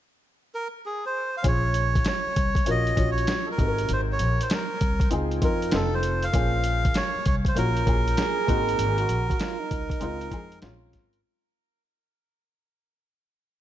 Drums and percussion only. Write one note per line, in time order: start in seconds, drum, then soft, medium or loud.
1.44 kick loud
1.44 closed hi-hat medium
1.74 closed hi-hat medium
1.95 kick medium
1.95 closed hi-hat medium
2.05 snare medium
2.05 closed hi-hat medium
2.36 kick medium
2.36 closed hi-hat medium
2.55 kick medium
2.55 closed hi-hat medium
2.66 closed hi-hat medium
2.87 closed hi-hat soft
2.97 kick medium
2.97 closed hi-hat medium
3.18 closed hi-hat soft
3.27 snare loud
3.27 closed hi-hat medium
3.58 kick loud
3.58 closed hi-hat medium
3.78 closed hi-hat soft
3.89 closed hi-hat medium
4.19 closed hi-hat medium
4.41 closed hi-hat medium
4.50 snare loud
4.50 closed hi-hat medium
4.81 kick loud
4.81 closed hi-hat medium
5.00 kick loud
5.00 closed hi-hat medium
5.11 closed hi-hat medium
5.31 closed hi-hat soft
5.42 kick medium
5.42 closed hi-hat medium
5.62 closed hi-hat soft
5.71 snare loud
5.71 closed hi-hat medium
6.03 closed hi-hat medium
6.23 closed hi-hat soft
6.34 kick loud
6.34 closed hi-hat medium
6.64 closed hi-hat medium
6.85 kick medium
6.85 closed hi-hat medium
6.94 snare loud
6.94 closed hi-hat medium
7.26 kick medium
7.26 closed hi-hat medium
7.45 kick medium
7.45 closed hi-hat medium
7.57 closed hi-hat medium
7.77 closed hi-hat soft
7.87 kick medium
7.87 closed hi-hat medium
8.08 closed hi-hat soft
8.17 snare loud
8.17 closed hi-hat medium
8.48 kick medium
8.48 closed hi-hat medium
8.69 closed hi-hat soft
8.79 closed hi-hat medium
8.98 closed hi-hat soft
9.09 closed hi-hat medium
9.30 kick medium
9.30 closed hi-hat medium
9.40 snare loud
9.40 closed hi-hat medium
9.71 kick medium
9.71 closed hi-hat medium
9.90 kick loud
9.90 closed hi-hat medium
10.01 closed hi-hat medium
10.21 closed hi-hat soft
10.31 kick medium
10.31 closed hi-hat medium
10.52 closed hi-hat soft
10.62 snare loud
10.62 closed hi-hat medium
10.93 kick medium
10.93 snare soft
10.93 closed hi-hat medium
11.13 closed hi-hat soft